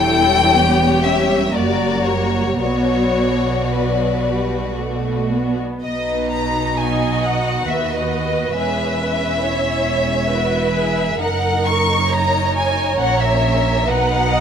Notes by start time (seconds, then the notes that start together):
Already playing: E1 E2 E4 A4 C#5 G5
0.07 G3
0.55 B3 G4
1.05 C#4 E5
1.55 F#1 F#2 A#3 F#4 A#4 D5
2.06 C#5
2.60 B1 B2 F#3 B3 F#4 C#5 D5
3.71 F#3 B4
4.25 G3
4.79 A3
5.33 B3
5.84 B1 B2 D#4 B4 D#5
6.32 A#5
6.76 F#4 D#5 G#5
7.24 F#5
7.67 D#2 B3 B4 E5
7.91 D#5
8.54 E1 E2 C#4 G#4 E5
9.00 E4
9.42 C#5
10.30 E4 F#4 B4
10.74 G#4
11.19 F#1 F#2 D#4 A#4 F#5
11.66 C#6
12.10 C#5 A#5
12.56 G#5
12.98 A#1 A#2 C#4 F#5
13.20 E5
13.86 B1 B2 D#4 B4 F#5
14.30 D#5